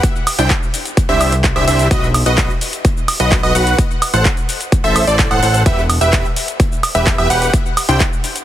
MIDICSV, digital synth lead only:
0, 0, Header, 1, 2, 480
1, 0, Start_track
1, 0, Key_signature, 1, "minor"
1, 0, Tempo, 468750
1, 36, Time_signature, 4, 2, 24, 8
1, 8646, End_track
2, 0, Start_track
2, 0, Title_t, "Digital synth lead"
2, 0, Program_c, 0, 84
2, 395, Note_on_c, 0, 79, 90
2, 553, Note_off_c, 0, 79, 0
2, 1115, Note_on_c, 0, 76, 99
2, 1368, Note_off_c, 0, 76, 0
2, 1596, Note_on_c, 0, 76, 107
2, 1687, Note_off_c, 0, 76, 0
2, 1716, Note_on_c, 0, 76, 88
2, 1919, Note_off_c, 0, 76, 0
2, 1955, Note_on_c, 0, 75, 83
2, 2114, Note_off_c, 0, 75, 0
2, 2315, Note_on_c, 0, 75, 88
2, 2568, Note_off_c, 0, 75, 0
2, 3275, Note_on_c, 0, 75, 86
2, 3486, Note_off_c, 0, 75, 0
2, 3515, Note_on_c, 0, 75, 108
2, 3617, Note_off_c, 0, 75, 0
2, 3636, Note_on_c, 0, 78, 86
2, 3861, Note_off_c, 0, 78, 0
2, 4235, Note_on_c, 0, 78, 89
2, 4394, Note_off_c, 0, 78, 0
2, 4955, Note_on_c, 0, 76, 98
2, 5171, Note_off_c, 0, 76, 0
2, 5195, Note_on_c, 0, 74, 91
2, 5407, Note_off_c, 0, 74, 0
2, 5435, Note_on_c, 0, 78, 108
2, 5537, Note_off_c, 0, 78, 0
2, 5555, Note_on_c, 0, 78, 85
2, 5759, Note_off_c, 0, 78, 0
2, 5795, Note_on_c, 0, 76, 85
2, 5953, Note_off_c, 0, 76, 0
2, 6155, Note_on_c, 0, 76, 90
2, 6408, Note_off_c, 0, 76, 0
2, 7115, Note_on_c, 0, 76, 84
2, 7326, Note_off_c, 0, 76, 0
2, 7355, Note_on_c, 0, 76, 111
2, 7457, Note_off_c, 0, 76, 0
2, 7475, Note_on_c, 0, 78, 90
2, 7701, Note_off_c, 0, 78, 0
2, 8075, Note_on_c, 0, 79, 89
2, 8233, Note_off_c, 0, 79, 0
2, 8646, End_track
0, 0, End_of_file